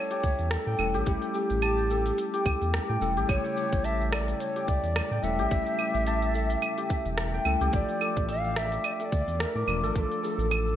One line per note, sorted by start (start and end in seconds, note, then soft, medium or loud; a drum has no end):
0.00 0.75 G3 medium
0.00 0.76 A3 medium
0.00 0.76 C#4 medium
0.00 0.77 E4 medium
0.00 0.11 G4 medium
0.00 0.79 A4 medium
0.00 0.52 C#5 loud
0.00 1.33 A5 loud
0.11 0.94 G4 medium
0.11 open hi-hat soft
0.11 shaker soft
0.23 0.34 C#2 medium
0.23 kick loud
0.23 shaker medium
0.39 0.57 E2 medium
0.39 open hi-hat soft
0.39 shaker soft
0.51 1.05 A4 loud
0.51 cross-stick medium
0.51 open hi-hat medium
0.51 shaker soft
0.67 0.75 A2 medium
0.67 2.74 G5 medium
0.67 shaker soft
0.78 0.96 E1 loud
0.78 1.03 G3 medium
0.78 1.04 A3 medium
0.78 1.04 C#4 medium
0.78 1.04 E4 medium
0.78 1.90 A4 medium
0.78 claves medium
0.78 shaker medium
0.94 1.03 A1 medium
0.94 1.34 G4 loud
0.94 open hi-hat soft
0.94 shaker soft
1.04 2.97 G3 medium
1.04 2.98 A3 medium
1.04 2.98 C#4 medium
1.04 1.12 G4 medium
1.04 kick loud
1.04 open hi-hat medium
1.04 shaker soft
1.08 2.99 E4 medium
1.22 open hi-hat soft
1.22 shaker soft
1.33 2.97 G4 loud
1.33 2.33 G4 medium
1.33 shaker medium
1.50 2.12 A1 medium
1.50 open hi-hat soft
1.50 shaker soft
1.62 3.55 A5 loud
1.62 open hi-hat medium
1.62 claves medium
1.62 shaker soft
1.78 shaker soft
1.90 3.01 A4 medium
1.90 shaker medium
2.06 open hi-hat soft
2.06 shaker soft
2.18 open hi-hat medium
2.18 shaker soft
2.34 3.17 G4 medium
2.34 open hi-hat soft
2.34 shaker soft
2.46 2.56 C#2 medium
2.46 kick loud
2.46 claves medium
2.46 shaker medium
2.62 2.79 E2 medium
2.62 open hi-hat soft
2.62 shaker soft
2.74 cross-stick medium
2.74 open hi-hat medium
2.74 shaker soft
2.89 2.98 A2 medium
2.89 4.96 G5 medium
2.89 shaker soft
3.00 3.18 E1 loud
3.00 3.16 G3 medium
3.00 3.17 A3 medium
3.00 3.17 C#4 medium
3.00 3.17 E4 medium
3.00 4.12 A4 medium
3.00 shaker medium
3.17 3.25 A1 medium
3.17 3.57 G4 loud
3.17 open hi-hat soft
3.17 shaker soft
3.26 3.40 A1 medium
3.26 5.21 C#3 medium
3.26 5.19 G3 medium
3.26 5.20 A3 medium
3.26 3.86 C#5 loud
3.26 kick loud
3.26 open hi-hat medium
3.26 claves medium
3.26 shaker soft
3.30 5.21 E4 medium
3.45 open hi-hat soft
3.45 shaker soft
3.57 4.55 G4 medium
3.57 shaker medium
3.72 4.34 A1 medium
3.72 kick loud
3.72 open hi-hat soft
3.72 shaker soft
3.84 4.12 E5 loud
3.84 5.78 A5 medium
3.84 open hi-hat medium
3.84 shaker medium
4.01 shaker soft
4.12 5.23 A4 medium
4.12 4.42 D5 loud
4.12 cross-stick medium
4.12 claves medium
4.12 shaker medium
4.28 open hi-hat soft
4.28 shaker soft
4.40 4.69 C#5 loud
4.40 open hi-hat medium
4.40 shaker soft
4.56 5.39 G4 medium
4.56 open hi-hat soft
4.56 shaker soft
4.67 4.79 C#2 medium
4.67 5.24 D5 loud
4.67 kick loud
4.67 shaker medium
4.83 5.01 E2 medium
4.83 open hi-hat soft
4.83 shaker soft
4.96 cross-stick medium
4.96 open hi-hat medium
4.96 claves medium
4.96 shaker soft
5.11 5.20 A2 medium
5.11 7.19 G5 medium
5.11 shaker soft
5.22 5.40 E1 medium
5.22 5.48 G3 medium
5.22 5.48 A3 medium
5.22 5.49 C#4 medium
5.22 5.49 E4 medium
5.22 6.34 A4 medium
5.22 7.46 E5 loud
5.22 shaker medium
5.39 5.47 A1 loud
5.39 5.79 G4 loud
5.39 open hi-hat soft
5.39 shaker soft
5.49 5.62 A1 medium
5.49 7.42 G3 medium
5.49 7.42 A3 medium
5.49 7.43 C#4 medium
5.49 kick loud
5.49 open hi-hat medium
5.49 shaker soft
5.53 7.44 E4 medium
5.67 open hi-hat soft
5.67 shaker soft
5.79 6.77 G4 medium
5.79 claves medium
5.79 shaker medium
5.95 6.56 A1 medium
5.95 open hi-hat soft
5.95 shaker soft
6.07 8.00 A5 loud
6.07 open hi-hat medium
6.07 shaker soft
6.22 open hi-hat soft
6.22 shaker soft
6.34 7.45 A4 medium
6.34 shaker medium
6.50 open hi-hat soft
6.50 shaker soft
6.62 open hi-hat medium
6.62 claves medium
6.62 shaker soft
6.78 7.61 G4 medium
6.78 open hi-hat soft
6.78 shaker soft
6.90 kick loud
6.90 shaker medium
7.06 7.39 E1 loud
7.06 open hi-hat soft
7.06 shaker soft
7.18 cross-stick medium
7.18 open hi-hat medium
7.18 shaker soft
7.34 9.41 G5 medium
7.34 shaker soft
7.45 7.56 C#2 medium
7.45 7.61 G3 medium
7.45 7.61 A3 medium
7.45 7.62 C#4 medium
7.45 7.62 E4 medium
7.45 8.00 A4 medium
7.45 claves medium
7.45 shaker medium
7.61 7.70 C#2 loud
7.61 10.75 G4 loud
7.61 open hi-hat soft
7.61 shaker soft
7.71 7.84 A1 loud
7.71 9.64 F3 medium
7.71 9.65 A3 medium
7.71 9.65 D4 medium
7.71 8.26 D5 loud
7.71 kick loud
7.71 open hi-hat medium
7.71 shaker soft
7.75 9.66 F4 medium
7.89 open hi-hat soft
7.89 shaker soft
8.01 9.00 A4 medium
8.01 claves medium
8.01 shaker medium
8.17 8.78 A1 medium
8.17 kick medium
8.17 open hi-hat soft
8.17 shaker soft
8.28 8.59 F5 loud
8.28 9.80 E6 loud
8.28 open hi-hat medium
8.28 shaker soft
8.44 shaker soft
8.56 9.67 D5 medium
8.56 8.87 E5 loud
8.56 cross-stick medium
8.56 shaker medium
8.72 open hi-hat soft
8.72 shaker soft
8.84 8.94 D5 loud
8.84 open hi-hat medium
8.84 claves medium
8.84 shaker soft
8.93 9.02 E5 medium
9.00 9.83 A4 medium
9.00 9.06 E5 loud
9.00 open hi-hat soft
9.00 shaker soft
9.05 9.42 D5 loud
9.12 9.23 D2 medium
9.12 kick loud
9.12 shaker medium
9.28 9.46 E2 medium
9.28 open hi-hat soft
9.28 shaker soft
9.40 9.96 A#4 loud
9.40 cross-stick medium
9.40 open hi-hat medium
9.40 shaker soft
9.55 9.64 A2 medium
9.55 10.76 D6 medium
9.55 shaker soft
9.67 9.85 E1 loud
9.67 9.92 F3 medium
9.67 9.92 A3 medium
9.67 9.93 D4 medium
9.67 9.93 F4 medium
9.67 10.76 D5 medium
9.67 claves medium
9.67 shaker medium
9.83 9.92 A1 loud
9.83 10.23 A4 loud
9.83 open hi-hat soft
9.83 shaker soft
9.94 10.06 A1 loud
9.94 10.76 F3 medium
9.94 10.76 A3 medium
9.94 10.76 D4 medium
9.94 10.01 A#4 medium
9.94 kick loud
9.94 open hi-hat medium
9.94 shaker soft
9.98 10.76 F4 medium
9.98 10.23 A4 loud
10.12 open hi-hat soft
10.12 shaker soft
10.23 10.76 A4 medium
10.23 10.76 A4 loud
10.23 shaker medium
10.38 10.76 A1 medium
10.38 open hi-hat soft
10.38 shaker soft
10.51 10.76 E6 loud
10.51 open hi-hat medium
10.51 claves medium
10.51 shaker soft
10.67 shaker soft